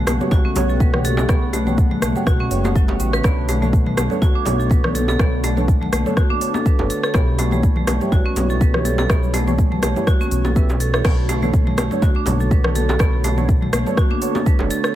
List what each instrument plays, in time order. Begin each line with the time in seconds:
Already playing: analog synth pad C#3 G3 A3 B3 F#5
0.07 detuned saw bass B1, marimba A3, cross-stick, open hi-hat, high bongo, muted conga, high conga, shaker
0.21 synth stab B3 F#4 G4 C#5, low conga, shaker
0.31 detuned saw bass B1, marimba F#4, kick, low bongo, shaker
0.45 marimba C#4, muted conga
0.56 detuned saw bass B1, synth stab B3 F#4 G4 C#5, open hi-hat, high bongo, low bongo, high conga, low conga, shaker
0.69 marimba A4, shaker
0.80 marimba B4, kick, muted conga, high conga, shaker
0.94 synth stab B3 F#4 G4 C#5, cross-stick, mid tom
1.05 marimba A4, open hi-hat, high conga, shaker
1.17 marimba A4, high bongo, shaker
1.29 detuned saw bass B1, synth stab B3 F#4 G4 C#5, marimba B3, kick, cross-stick, low bongo, muted conga, shaker
1.53 marimba A3, open hi-hat, high bongo, shaker
1.67 marimba A3, synth stab B3 F#4 G4 C#5, mid tom, muted conga, high conga, shaker
1.78 kick, shaker
1.91 marimba A3, mid tom, low conga
2.02 detuned saw bass B1, marimba A3, cross-stick, open hi-hat, muted conga, high conga, shaker
2.16 synth stab B3 F#4 G4 C#5, low conga, shaker
2.27 detuned saw bass B1, marimba F#4, kick, cross-stick, shaker
2.39 marimba C#4, muted conga, high conga
2.51 detuned saw bass F#1, synth stab B3 F#4 G4 C#5, open hi-hat, shaker
2.64 marimba A3, high bongo, high conga, shaker
2.75 marimba F#3, kick, muted conga, shaker
2.88 synth stab B3 F#4 G4 C#5, high bongo, low bongo
3.00 detuned saw bass A1, marimba C#4, open hi-hat, shaker
3.13 marimba B4, cross-stick, shaker
3.23 detuned saw bass B1, analog synth pad D3 C#5, marimba B3, synth stab B3 D4 A4 C#5, kick, cross-stick, low bongo, muted conga, shaker
3.49 marimba A3, open hi-hat, high bongo, shaker
3.62 marimba A3, synth stab B3 D4 A4 C#5, mid tom, muted conga, high conga, shaker
3.73 kick, shaker
3.86 marimba A3, mid tom, low conga
3.97 detuned saw bass B1, marimba A3, cross-stick, open hi-hat, high bongo, muted conga, high conga, shaker
4.10 synth stab B3 D4 A4 C#5, low conga, shaker
4.22 detuned saw bass D2, marimba F#4, kick, low bongo, shaker
4.35 marimba D4, muted conga
4.45 detuned saw bass B1, synth stab B3 D4 A4 C#5, open hi-hat, high bongo, low bongo, high conga, low conga, shaker
4.60 marimba A4, shaker
4.70 marimba B4, kick, muted conga, high conga, shaker
4.84 synth stab B3 D4 A4 C#5, cross-stick, mid tom
4.95 marimba A4, open hi-hat, high conga, shaker
5.08 marimba A4, high bongo, shaker
5.19 detuned saw bass B1, synth stab B3 D4 A4 C#5, marimba B3, analog synth pad D4, kick, cross-stick, low bongo, muted conga, shaker
5.44 marimba A3, open hi-hat, high bongo, shaker
5.57 marimba A3, synth stab B3 D4 A4 C#5, mid tom, muted conga, high conga, shaker
5.68 kick, shaker
5.82 marimba A3, mid tom, low conga
5.92 detuned saw bass B1, marimba A3, cross-stick, open hi-hat, muted conga, high conga, shaker
6.06 synth stab B3 D4 A4 C#5, low conga, shaker
6.17 marimba F#4, kick, cross-stick, shaker
6.30 marimba D4, muted conga, high conga
6.41 synth stab B3 D4 A4 C#5, open hi-hat, shaker
6.54 marimba A4, high bongo, high conga, shaker
6.66 marimba B4, kick, muted conga, shaker
6.79 detuned saw bass F#1, synth stab B3 D4 A4 C#5, high bongo, low bongo
6.90 marimba A4, open hi-hat, shaker
7.03 marimba A4, cross-stick, shaker
7.14 detuned saw bass B1, analog synth pad E3 G3 B3 C#5, synth stab B3 E4 G4 C#5, marimba B3, kick, cross-stick, low bongo, muted conga, shaker
7.38 marimba A3, open hi-hat, high bongo, shaker
7.51 marimba A3, synth stab B3 E4 G4 C#5, mid tom, muted conga, high conga, shaker
7.63 kick, shaker
7.76 marimba A3, mid tom, low conga
7.87 detuned saw bass B1, marimba A3, cross-stick, open hi-hat, high bongo, muted conga, high conga, shaker
8.01 synth stab B3 E4 G4 C#5, low conga, shaker
8.12 detuned saw bass B1, marimba F#4, kick, low bongo, shaker
8.26 marimba C#4, muted conga
8.36 detuned saw bass B1, synth stab B3 E4 G4 C#5, open hi-hat, high bongo, low bongo, high conga, low conga, shaker
8.50 marimba A4, shaker
8.61 marimba B4, kick, muted conga, high conga, shaker
8.74 synth stab B3 E4 G4 C#5, cross-stick, mid tom
8.85 marimba A4, open hi-hat, high conga, shaker
8.98 marimba A4, high bongo, shaker
9.10 detuned saw bass B1, synth stab B3 E4 G4 C#5, marimba B3, kick, cross-stick, low bongo, muted conga, shaker
9.23 shaker
9.34 marimba A3, open hi-hat, high bongo, shaker
9.47 marimba A3, synth stab B3 E4 G4 C#5, mid tom, muted conga, high conga, shaker
9.58 kick, shaker
9.72 marimba A3, mid tom, low conga
9.82 detuned saw bass B1, marimba A3, cross-stick, open hi-hat, high bongo, low bongo, muted conga, high conga, shaker
9.96 synth stab B3 E4 G4 C#5, low conga, shaker
10.07 marimba F#4, kick, cross-stick, shaker
10.21 marimba C#4, muted conga, high conga, shaker
10.31 detuned saw bass B1, open hi-hat, shaker
10.45 marimba A4, high bongo, high conga, shaker
10.56 synth stab B3 E4 G4 E5, marimba B4, kick, muted conga, shaker
10.70 high bongo, low bongo, shaker
10.80 marimba A4, open hi-hat, shaker
10.94 synth stab B3 E4 G4 C#5, marimba A4, cross-stick, shaker
11.05 detuned saw bass B1, analog synth pad D3 A3 B3 F#4, synth stab B3 D4 A4 C#5, marimba B3, kick, cross-stick, crash, low bongo, muted conga, shaker
11.29 marimba A3, open hi-hat, high bongo, shaker
11.42 marimba A3, synth stab B3 D4 A4 C#5, mid tom, muted conga, high conga, shaker
11.54 kick, shaker
11.67 marimba A3, mid tom, low conga
11.77 detuned saw bass B1, marimba A3, cross-stick, open hi-hat, high bongo, muted conga, high conga, shaker
11.91 synth stab B3 D4 A4 C#5, low conga, shaker
12.02 detuned saw bass D2, marimba F#4, kick, low bongo, shaker
12.15 marimba D4, muted conga
12.26 detuned saw bass B1, synth stab B3 D4 A4 C#5, open hi-hat, high bongo, low bongo, high conga, low conga, shaker
12.40 marimba A4, shaker
12.51 marimba B4, kick, muted conga, high conga, shaker
12.64 synth stab B3 D4 A4 C#5, cross-stick, mid tom
12.75 marimba A4, open hi-hat, high conga, shaker
12.89 marimba A4, high bongo, shaker
12.99 detuned saw bass B1, marimba B3, synth stab B3 D4 A4 C#5, kick, cross-stick, low bongo, muted conga, shaker
13.24 marimba A3, open hi-hat, high bongo, shaker
13.38 marimba A3, synth stab B3 D4 A4 C#5, mid tom, muted conga, high conga, shaker
13.49 kick, shaker
13.62 marimba A3, mid tom, low conga
13.73 detuned saw bass B1, marimba A3, cross-stick, open hi-hat, muted conga, high conga, shaker
13.86 synth stab B3 D4 A4 C#5, low conga, shaker
13.97 marimba F#4, kick, cross-stick, shaker
14.11 marimba D4, muted conga, high conga
14.22 synth stab B3 D4 A4 C#5, open hi-hat, shaker
14.35 marimba A4, high bongo, high conga, shaker
14.46 marimba B4, kick, muted conga, shaker
14.59 detuned saw bass F#1, synth stab B3 D4 A4 C#5, high bongo, low bongo
14.70 marimba A4, open hi-hat, shaker
14.84 marimba A4, cross-stick, shaker